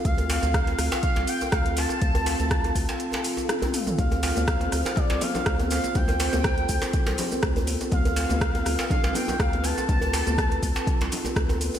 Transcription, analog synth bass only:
X:1
M:4/4
L:1/16
Q:"Swing 16ths" 1/4=122
K:Ddor
V:1 name="Analog synth bass" clef=bass
D,,3 D,,3 D,, z2 C,, z2 D,,3 z | D,,3 D,,3 D,, z8 z | D,,3 D,,3 D,, z2 C,, z2 D,,3 z | D,,3 D,,3 D,, z2 C,, z2 D,,3 z |
D,,3 D,,3 D,, z2 C,, z2 D,,3 z | D,,3 D,,3 D,, z2 C,, z2 D,,3 z |]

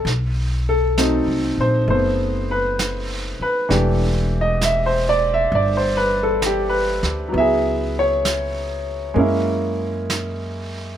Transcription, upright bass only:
X:1
M:4/4
L:1/8
Q:"Swing" 1/4=66
K:Bphr
V:1 name="Upright bass" clef=bass
B,,,2- (3B,,, C,, _B,,, F,,,3 z | E,,,4 G,,,3 D,, | ^C,,4 F,,4 |]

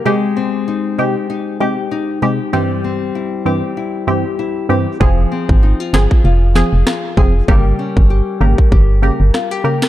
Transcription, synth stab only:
X:1
M:4/4
L:1/16
Q:"Swing 16ths" 1/4=97
K:Fm
V:1 name="Synth stab"
[C,A,G]4 z2 [C,A,G] z3 [C,A,G] z3 [C,A,G] z | [G,,=E,CG]4 z2 [G,,E,CG] z3 [G,,E,CG] z3 [G,,E,CG] z | [F,CA]4 z2 [F,CA] z3 [F,CA] z3 [F,CA] z | [D,B,G]4 z2 [D,B,G] z3 [D,B,G] z3 [D,B,G] z |]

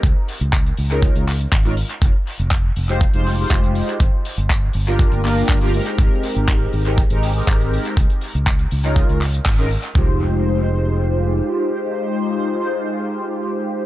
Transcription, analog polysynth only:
X:1
M:4/4
L:1/16
Q:1/4=121
K:Fm
V:1 name="Analog polysynth"
z6 z [A,DEFB]3 z3 [A,DEFB] z2 | z6 z [A,EFGc] z [A,EFGc]2 [A,EFGc]4- [A,EFGc] | z6 z [B,=DFGB]3 [B,DFGB]3 [B,DFGB] [A,CEGB]2- | [A,CEGB]6- [A,CEGB] [A,CEGB] z [A,CEGB]2 [A,CEGB]4- [A,CEGB] |
z6 z [A,DEFB]3 z3 [A,DEFB] z2 | [A,EFGc]16- | [A,EFGc]16 |]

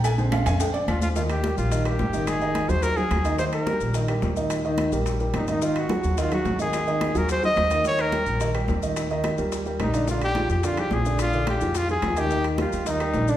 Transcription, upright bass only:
X:1
M:4/4
L:1/8
Q:1/4=215
K:Eb
V:1 name="Upright bass" clef=bass
B,,,3 F,,3 E,,2- | E,,3 B,,,3 A,,,2- | A,,,3 E,,3 E,,2- | E,,3 B,,,3 E,,2- |
E,,3 B,,,3 A,,,2- | A,,,3 E,,3 A,,,2- | A,,,3 E,,3 E,,2- | E,,3 B,,,3 E,,2- |
E,,3 E,,3 B,,,2- | B,,,3 F,,3 B,,,2- | B,,,3 F,,3 E,,2- | E,,3 E,,3 B,,,2 |]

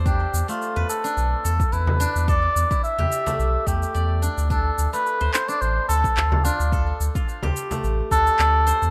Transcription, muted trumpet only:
X:1
M:4/4
L:1/16
Q:"Swing 16ths" 1/4=108
K:Ddor
V:1 name="Muted trumpet"
G3 F3 A6 B4 | d4 e6 G4 z2 | A3 B3 c d c2 A4 F2- | F2 z8 A6 |]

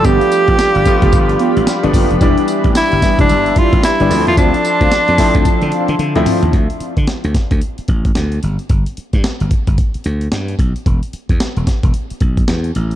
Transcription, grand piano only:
X:1
M:4/4
L:1/16
Q:"Swing 16ths" 1/4=111
K:Ddor
V:1 name="Grand piano"
[F,A,B,D]4 z2 [F,A,B,F]4- [F,A,B,F] z2 [F,A,B,D]2 z | [E,G,B,D]4 z2 [E,G,B,E]4- [E,G,B,E] z2 [E,G,B,D] [F,A,CE]2- | [F,A,CE]4 z2 [F,A,CE]4- [F,A,CE] z2 [F,A,CE]2 z | z16 |
z16 | z16 |]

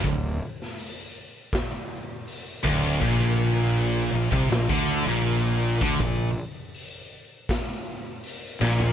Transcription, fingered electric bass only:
X:1
M:4/4
L:1/16
Q:1/4=80
K:Bblyd
V:1 name="Fingered electric bass" clef=bass
D,,,2 z12 D,,,2 | B,,,6 B,,, C,, B,,, D,,2 B,,,4 D,, | B,,,2 z12 B,,,2 |]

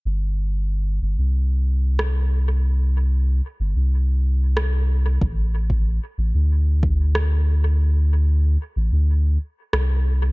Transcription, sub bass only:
X:1
M:4/4
L:1/16
Q:1/4=93
K:Cmix
V:1 name="Sub bass" clef=bass
G,,,6 G,,, C,,8- C,,- | C,,4- C,, z G,,, C,,8- C,, | A,,,4- A,,, z A,,, D,,8- D,,- | D,,4- D,, z A,,, D,,3 z2 C,,4 |]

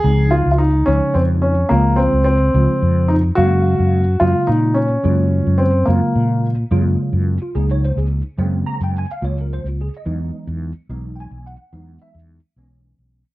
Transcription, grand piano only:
X:1
M:6/8
L:1/16
Q:3/8=72
K:Gblyd
V:1 name="Grand piano"
^G2 F3/2 F/2 E2 D2 C2 D2 | B,2 C2 C6 E2 | G6 F2 E2 D2- | D4 C2 B,4- B,/2 z3/2 |
z12 | z12 | z12 | z12 |]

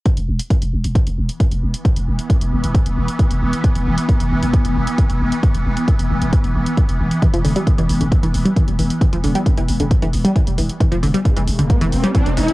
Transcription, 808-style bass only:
X:1
M:4/4
L:1/16
Q:1/4=134
K:C
V:1 name="808-style bass" clef=bass
z E,,, E,,, z2 E,,, E,,, E,,, z E,,, E,,, z2 E,,, E,,, z | z E,,, E,,, z2 E,,, E,,, E,,, z E,,, E,,, z2 E,,, E,,, z | z E,,, E,,, z2 E,,, E,,, E,,, z E,,, E,,, z2 E,,, E,,, z | z E,,, E,,, z2 E,,, E,,, E,,, z E,,, E,,, z2 E,,, E,,, z |
z E,,, E,,, z2 E,,, E,,, E,,, z E,,, E,,, z2 E,,, E,,, z | z E,,, E,,, z2 E,,, E,,, E,,, z E,,, E,,, z2 E,,, E,,, z | z E,,, E,,, z2 E,,, E,,, E,,, z E,,, E,,, z2 E,,, E,,, z |]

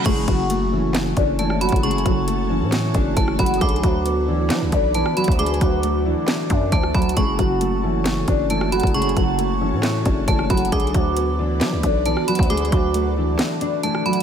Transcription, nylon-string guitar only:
X:1
M:4/4
L:1/8
Q:1/4=135
K:F#m
V:1 name="Nylon-string guitar"
[G,G] [F,F]2 [E,E]2 [Dd] [E,E] [F,F] | [G,G] [F,F]2 [E,E]2 [Dd] [E,E] [F,F] | [G,G] [F,F]2 [E,E]2 [Dd] [E,E] [F,F] | [G,G] [F,F]2 [E,E]2 [Dd] [E,E] [F,F] |
[G,G] [F,F]2 [E,E]2 [Dd] [E,E] [F,F] | [G,G] [F,F]2 [E,E]2 [Dd] [E,E] [F,F] | [G,G] [F,F]2 [E,E]2 [Dd] [E,E] [F,F] | [G,G] [F,F]2 [E,E]2 [Dd] [E,E] [F,F] |]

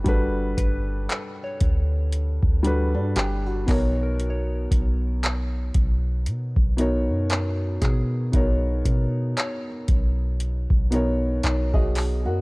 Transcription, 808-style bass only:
X:1
M:4/4
L:1/16
Q:"Swing 16ths" 1/4=58
K:B
V:1 name="808-style bass" clef=bass
=G,,,2 G,,,2 z2 =D,,3 D,,2 =G,, G,,,2 B,,,2- | B,,,2 B,,,4 B,,,2 B,, B,,,2 F,,3 B,,2 | B,,,2 B,,2 z2 B,,,3 B,,,3 B,,, B,,,2 F,, |]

